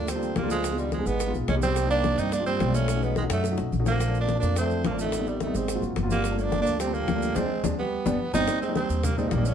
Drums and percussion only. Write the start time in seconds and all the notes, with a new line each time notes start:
0.08 high bongo, high conga, maracas
0.22 high conga, maracas
0.36 high bongo, low bongo, high conga, maracas
0.50 high conga, maracas
0.64 high bongo, high conga, maracas
0.78 high bongo, high conga, maracas
0.92 high bongo, high conga, maracas
1.06 high bongo, high conga, maracas
1.20 high bongo, high conga, maracas
1.34 high bongo, high conga, maracas
1.48 high bongo, low bongo, high conga, maracas
1.62 high conga, maracas
1.76 high bongo, maracas
1.90 high conga, maracas
2.04 high bongo, high conga, maracas
2.18 high conga, maracas
2.32 high bongo, high conga, maracas
2.46 high conga, maracas
2.60 high bongo, low bongo, high conga, maracas
2.74 high conga, maracas
2.88 high bongo, high conga, maracas
3.02 high bongo, high conga, maracas
3.16 high bongo, high conga, maracas
3.30 high bongo, high conga, maracas
3.44 high bongo, high conga, maracas
3.58 low bongo, high conga, maracas
3.72 high conga, maracas
3.86 low bongo, high conga, maracas
4.00 high bongo, high conga, maracas
4.15 high conga, maracas
4.29 high bongo, high conga, maracas
4.43 high conga, maracas
4.56 high bongo, high conga, maracas
4.70 high conga, maracas
4.84 high bongo, low bongo, high conga, maracas
4.99 high conga, maracas
5.12 high bongo, high conga, maracas
5.27 high bongo, high conga, maracas
5.40 high bongo, high conga, maracas
5.55 high bongo, high conga, maracas
5.68 high bongo, high conga, maracas
5.82 high bongo, high conga, maracas
5.96 high bongo, low bongo, high conga, maracas
6.10 high conga, maracas
6.24 high bongo, high conga, maracas
6.38 high conga, maracas
6.52 high bongo, high conga, maracas
6.66 high conga, maracas
6.80 high bongo, high conga, maracas
6.94 high conga, maracas
7.08 high bongo, low bongo, high conga, maracas
7.22 high conga, maracas
7.35 low bongo, high conga, maracas
7.64 low bongo, high conga, maracas
8.06 low bongo, high conga, maracas
8.34 low bongo, high conga, maracas
8.48 high bongo, high conga, maracas
8.62 high conga, maracas
8.75 high bongo, high conga, maracas
8.90 high conga, maracas
9.04 high bongo, high conga, low conga, maracas
9.18 high conga, low conga, maracas
9.31 high bongo, low bongo, high conga, maracas
9.45 high conga, maracas